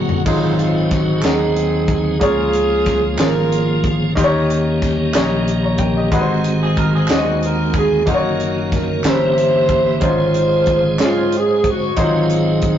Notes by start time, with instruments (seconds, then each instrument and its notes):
Already playing: slap bass G1, grand piano G#2 F#3 A#3 F#4 G#4 A#4 C5, tonewheel organ F#3 A#3 C4 G#4 F#5, saxophone section F#4
0.09 floor tom
0.24 slap bass G#1, grand piano G#2 F#3 G#3 D#4 C5, tonewheel organ F#3 C4 D#4 G#4, saxophone section C4 F4, kick, crash
0.57 saxophone section F4, closed hi-hat
0.89 saxophone section F#4, kick, snare, closed hi-hat
1.20 slap bass D#2, grand piano G#3 D#4, saxophone section C4 G#4, clap, closed hi-hat
1.24 saxophone section D#4, grand piano F#4 A#4, snare
1.56 closed hi-hat
1.88 kick, closed hi-hat
2.19 slap bass C#2, grand piano C#3 A#3 F4 G#4 C#5, tonewheel organ F3 A#3 C#4, saxophone section G#4, kick, closed hi-hat
2.23 saxophone section F4, tonewheel organ G#4
2.53 closed hi-hat
2.86 kick, snare, closed hi-hat
3.17 slap bass G#1, grand piano A#3 F4 G#4 C5, saxophone section A#4, snare, clap, closed hi-hat
3.21 saxophone section F4
3.52 closed hi-hat
3.84 kick, closed hi-hat
4.15 slap bass D#2, grand piano D#3 A#3 D#4 G4 C5, tonewheel organ D#3 C#4, kick, closed hi-hat
4.19 tonewheel organ A#3 G4
4.24 grand piano C#5
4.50 closed hi-hat
4.82 kick, snare, closed hi-hat
5.13 slap bass A#1, grand piano A#3 D#4 G4 C#5, snare, clap, closed hi-hat
5.48 closed hi-hat
5.63 grand piano C#5 A#5
5.78 grand piano A#4 G5, kick, closed hi-hat
5.97 grand piano G4 D#5
6.11 slap bass G#1, grand piano G#2 G#3 D#4 F#4 B4, tonewheel organ D#3 G#3 C4 F#4, kick, closed hi-hat
6.21 grand piano C5
6.44 closed hi-hat
6.63 clean electric guitar C4 G#4
6.77 clean electric guitar A#4, kick, closed hi-hat
6.95 clean electric guitar C4 G#4
7.08 slap bass D#2, grand piano G#3 D#4 F#4 D5, saxophone section F#4, snare, clap, closed hi-hat
7.18 grand piano D#5
7.43 saxophone section A#4, closed hi-hat
7.74 saxophone section G#4, kick, closed hi-hat
8.06 slap bass F#1, tonewheel organ D#3 A#3 C#4 F4, grand piano A#3 D#4 F#4 C5, saxophone section A#3 D#4 F#4, kick, closed hi-hat
8.13 tonewheel organ F#4, grand piano C#5
8.40 saxophone section F#4, closed hi-hat
8.72 saxophone section A#4, kick, snare, closed hi-hat
9.03 slap bass G1, grand piano G2 G3 C#4 E4 A#4, tonewheel organ E3 A#3 C#4 G4, saxophone section E4, snare, clap, closed hi-hat
9.08 saxophone section C5
9.38 closed hi-hat
9.69 kick, closed hi-hat
9.99 slap bass G#1, grand piano G#2 G#3 C#4 F4 C5, tonewheel organ G#3 C#4 G#4 C5, kick, closed hi-hat
10.04 saxophone section F4 C5
10.34 closed hi-hat
10.66 kick, closed hi-hat
10.99 slap bass G#2, grand piano G#3 C#4 F4 G#4, snare, clap, closed hi-hat
11.04 saxophone section F4
11.32 closed hi-hat
11.37 saxophone section G#4
11.64 kick, closed hi-hat
11.70 saxophone section F#4
11.96 slap bass G#1, grand piano G#2 F#3 G#3 D#4 C5, tonewheel organ F#3 C4 D#4 G#4, saxophone section C4 F4, kick, closed hi-hat
12.30 closed hi-hat
12.62 kick, closed hi-hat